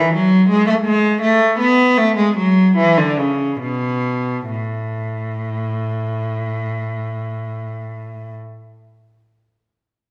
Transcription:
0.00 0.14 E3 medium
0.14 0.48 F#3 medium
0.49 0.66 G#3 medium
0.67 0.74 A3 medium
0.85 1.20 G#3 medium
1.21 1.58 A3 medium
1.59 1.96 B3 medium
1.97 2.16 A3 medium
2.17 2.35 G#3 medium
2.36 2.75 F#3 medium
2.77 2.96 E3 medium
2.98 3.17 D3 medium
3.18 3.60 C#3 medium
3.61 4.49 B2 medium
4.51 8.33 A2 medium

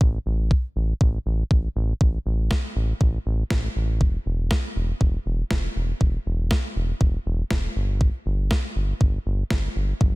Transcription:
0.01 0.18 A1 loud
0.01 kick loud
0.26 0.52 A1 loud
0.51 kick loud
0.76 0.93 A1 medium
1.01 1.18 A1 loud
1.01 kick loud
1.26 1.43 A1 loud
1.51 1.68 A1 medium
1.51 kick loud
1.76 1.93 A1 loud
2.01 2.18 A1 loud
2.01 kick loud
2.26 2.52 A1 medium
2.51 kick loud
2.51 snare loud
2.76 2.93 A1 loud
3.01 3.18 A1 loud
3.01 kick loud
3.26 3.43 A1 loud
3.50 3.68 A1 loud
3.50 kick loud
3.50 snare loud
3.76 4.02 A1 medium
4.01 4.18 E1 loud
4.01 kick loud
4.26 4.52 E1 loud
4.51 kick loud
4.51 snare loud
4.76 4.93 E1 medium
5.01 5.18 E1 loud
5.01 kick loud
5.26 5.43 E1 loud
5.51 5.68 E1 medium
5.51 kick loud
5.51 snare loud
5.76 5.93 E1 loud
6.01 6.18 E1 loud
6.01 kick loud
6.26 6.52 E1 medium
6.51 kick loud
6.51 snare loud
6.76 6.93 E1 medium
7.01 7.18 E1 loud
7.01 kick loud
7.26 7.43 E1 loud
7.51 7.68 E1 medium
7.51 kick loud
7.51 snare loud
7.76 8.11 G1 loud
8.01 kick loud
8.26 8.52 G1 loud
8.51 kick loud
8.51 snare loud
8.76 8.93 G1 medium
9.01 9.18 G1 loud
9.01 kick loud
9.26 9.43 G1 loud
9.50 9.68 G1 loud
9.50 kick loud
9.50 snare loud
9.76 9.93 G1 loud
10.01 10.15 G1 loud
10.01 kick loud
10.01 high tom medium

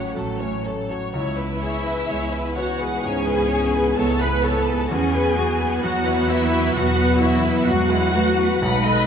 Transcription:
0.00 1.10 A1 medium
0.00 0.16 F#3 soft
0.00 0.78 F#3 medium
0.00 0.63 A3 medium
0.00 0.41 C#4 soft
0.00 0.78 C#4 medium
0.00 0.14 F#4 medium
0.00 0.90 F#4 soft
0.00 0.17 C#5 medium
0.00 0.66 C#5 soft
0.00 0.15 F#5 medium
0.15 1.04 A1 medium
0.15 0.56 F#3 soft
0.15 0.39 A4 medium
0.39 0.81 C#4 soft
0.39 0.65 C#5 medium
0.66 0.91 A4 soft
0.66 1.05 C#5 soft
0.90 1.15 F#4 soft
0.90 1.12 C#5 soft
1.13 3.00 C#2 medium
1.13 1.99 C#2 medium
1.13 4.85 E3 medium
1.13 4.86 B3 medium
1.13 2.53 E4 medium
1.13 1.37 C#5 medium
1.13 2.53 E5 medium
1.38 1.77 B4 soft
1.38 1.63 B4 soft
1.62 2.01 G#4 medium
1.62 1.86 C#5 medium
1.84 2.09 B4 medium
1.84 2.25 B4 soft
2.09 2.93 C#2 medium
2.09 2.48 G#3 soft
2.09 2.32 C#5 medium
2.33 2.72 E4 soft
2.33 2.57 B4 medium
2.57 3.04 F#4 medium
2.57 2.96 B4 soft
2.57 2.81 C#5 medium
2.57 3.05 F#5 medium
2.80 3.19 G#4 soft
2.80 3.04 B4 medium
3.03 3.87 C#2 medium
3.03 3.43 G#2 soft
3.03 3.94 C#4 medium
3.03 3.97 G#4 loud
3.03 3.26 C#5 medium
3.03 3.98 G#5 medium
3.27 3.51 B4 medium
3.27 3.66 B4 soft
3.49 3.89 G#4 medium
3.49 3.74 C#5 medium
3.74 3.97 B4 medium
3.74 4.12 B4 medium
3.97 4.79 C#2 medium
3.97 4.35 G#3 medium
3.97 4.90 B3 medium
3.97 4.21 A4 loud
3.97 4.19 C#5 medium
3.97 4.20 A5 medium
4.21 4.58 E4 medium
4.21 4.44 B4 loud
4.21 4.44 B4 medium
4.21 4.44 B5 medium
4.43 4.90 A4 loud
4.43 4.81 B4 medium
4.43 4.67 C#5 medium
4.43 4.90 A5 medium
4.66 4.91 G#4 soft
4.66 4.90 B4 medium
4.88 5.72 E2 medium
4.88 6.72 E2 medium
4.88 8.46 F#3 medium
4.88 8.46 B3 medium
4.88 5.37 C#4 medium
4.88 5.11 F#4 medium
4.88 5.82 G#4 loud
4.88 5.84 G#5 medium
5.13 5.37 B4 medium
5.13 5.52 B4 medium
5.37 7.66 B3 medium
5.37 5.60 F#4 medium
5.37 5.75 F#4 medium
5.61 5.84 B4 medium
5.61 5.98 B4 medium
5.84 6.65 E2 medium
5.84 6.20 F#3 medium
5.84 6.30 F#4 loud
5.84 6.05 F#4 medium
5.84 6.30 F#5 medium
6.06 6.43 E4 medium
6.06 6.29 B4 medium
6.29 6.75 E4 loud
6.29 6.52 F#4 medium
6.29 6.66 B4 medium
6.29 6.76 E5 loud
6.51 6.89 F#4 medium
6.51 6.75 B4 medium
6.74 7.55 E2 loud
6.74 7.12 B2 medium
6.74 6.96 F#4 medium
6.74 7.21 F#4 loud
6.74 7.21 F#5 loud
6.95 7.19 B4 medium
6.95 7.35 B4 medium
7.19 7.66 E4 loud
7.19 7.43 F#4 medium
7.19 7.58 F#4 medium
7.23 7.68 E5 medium
7.44 7.67 B4 medium
7.44 7.81 B4 medium
7.65 8.51 E2 medium
7.65 8.05 F#3 medium
7.65 8.15 G#3 loud
7.65 7.87 F#4 medium
7.65 8.62 F#4 loud
7.65 8.63 F#5 loud
7.90 8.29 E4 medium
7.90 8.14 B4 medium
8.13 8.62 A3 medium
8.13 8.38 F#4 medium
8.13 8.54 B4 medium
8.37 8.63 F#4 medium
8.37 8.62 B4 medium
8.60 9.07 B1 medium
8.60 9.07 F#3 medium
8.60 9.07 G#3 medium
8.60 9.07 D#4 medium
8.60 9.07 B4 loud
8.60 8.83 F#5 medium
8.60 9.07 B5 loud
8.85 9.07 A4 medium
8.85 9.07 D#5 medium

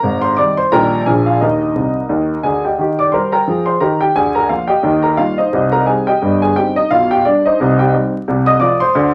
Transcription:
0.00 0.33 G#1 medium
0.00 0.32 G#2 medium
0.00 0.21 A#4 medium
0.00 0.24 A#5 medium
0.21 0.37 C5 medium
0.21 0.37 C6 medium
0.37 0.57 D#3 soft
0.37 0.57 G3 soft
0.37 0.57 D#4 soft
0.37 0.57 D5 medium
0.37 0.57 D6 medium
0.57 0.71 C5 medium
0.57 0.72 C6 medium
0.72 1.01 A#1 medium
0.72 1.01 A#2 medium
0.72 0.91 D#3 soft
0.72 0.92 G3 medium
0.72 0.92 D#4 soft
0.72 1.05 A#4 medium
0.72 1.05 G5 medium
0.72 1.07 A#5 medium
1.06 1.36 A#1 medium
1.06 1.36 A#2 medium
1.06 1.26 F3 soft
1.06 1.26 A#3 soft
1.06 1.27 D4 soft
1.06 1.26 G#4 medium
1.06 1.26 G#5 medium
1.26 1.41 F4 medium
1.26 1.41 F5 medium
1.41 1.69 D#2 medium
1.41 1.69 D#3 medium
1.41 2.61 D#4 medium
1.41 2.61 A#4 medium
1.41 2.64 D#5 medium
1.75 2.01 C2 soft
1.75 2.01 C3 soft
2.09 2.35 D#2 medium
2.09 2.35 D#3 medium
2.43 2.70 D2 soft
2.43 2.70 D3 medium
2.43 2.63 G#4 medium
2.43 2.64 G#5 medium
2.65 2.80 G4 soft
2.65 2.97 D#5 soft
2.65 2.99 G5 medium
2.78 3.06 D#3 medium
2.78 3.07 G4 medium
2.99 3.12 D5 medium
2.99 3.13 D6 medium
3.12 3.40 G3 medium
3.12 3.31 A#4 medium
3.12 3.32 C5 medium
3.12 3.32 C6 medium
3.32 3.64 A#4 medium
3.32 3.65 G5 medium
3.32 3.67 A#5 medium
3.47 3.75 F3 medium
3.47 3.75 G#4 medium
3.66 3.80 C5 medium
3.66 3.81 C6 medium
3.80 4.08 D#3 medium
3.80 4.01 G4 medium
3.80 4.00 A#4 medium
3.80 4.01 A#5 medium
4.01 4.15 G4 medium
4.01 4.15 G5 medium
4.16 4.45 D2 medium
4.16 4.45 D3 medium
4.16 4.34 G#4 medium
4.16 4.35 G#5 medium
4.35 4.49 A#4 medium
4.35 4.49 A#5 medium
4.49 4.69 F3 soft
4.49 4.69 A#3 soft
4.49 4.69 F4 medium
4.49 4.69 F5 medium
4.68 5.01 G4 medium
4.68 5.01 D#5 medium
4.68 5.03 G5 medium
4.83 5.12 D#2 medium
4.83 5.13 D#3 medium
5.03 5.17 A#4 medium
5.03 5.17 A#5 medium
5.17 5.36 G3 soft
5.17 5.37 A#3 soft
5.17 5.37 D#4 soft
5.17 5.37 F4 medium
5.17 5.38 F5 medium
5.38 5.70 D#4 medium
5.38 5.70 C5 soft
5.38 5.72 D#5 medium
5.53 5.82 C2 medium
5.53 5.82 C3 medium
5.72 5.86 A#4 medium
5.72 5.86 A#5 medium
5.86 6.06 G3 soft
5.86 6.06 C4 soft
5.86 6.06 D#4 soft
5.86 6.06 G#4 soft
5.86 6.06 G#5 medium
6.07 6.39 G4 medium
6.07 6.39 D#5 medium
6.07 6.41 G5 medium
6.22 6.50 G1 medium
6.22 6.51 G2 medium
6.42 6.55 G#4 medium
6.42 6.56 G#5 medium
6.56 6.75 G3 soft
6.56 6.75 C4 soft
6.56 6.75 D#4 soft
6.56 6.75 G4 medium
6.56 6.75 G5 medium
6.76 6.89 D#4 medium
6.76 6.90 D#5 medium
6.91 7.20 B1 medium
6.91 7.19 B2 medium
6.91 7.09 F4 medium
6.91 7.10 F5 loud
7.11 7.24 G4 medium
7.11 7.24 G5 medium
7.25 7.44 G3 soft
7.25 7.44 D4 medium
7.25 7.44 D5 medium
7.45 7.77 D#4 medium
7.45 7.77 C5 medium
7.45 7.78 D#5 medium
7.60 7.88 C2 medium
7.60 7.88 C3 medium
7.79 7.92 G4 medium
7.79 7.93 G5 medium
7.94 8.12 G3 soft
7.94 8.12 C4 soft
7.94 8.13 D#4 soft
8.28 8.56 C2 medium
8.28 8.56 C3 medium
8.46 8.60 D#5 medium
8.46 8.60 D#6 medium
8.60 8.79 F3 soft
8.60 8.79 A3 soft
8.60 8.79 F4 medium
8.60 8.79 D5 medium
8.60 8.80 D6 medium
8.80 9.13 C5 medium
8.80 9.14 C6 medium
8.95 9.14 D2 medium
8.95 9.14 D3 medium

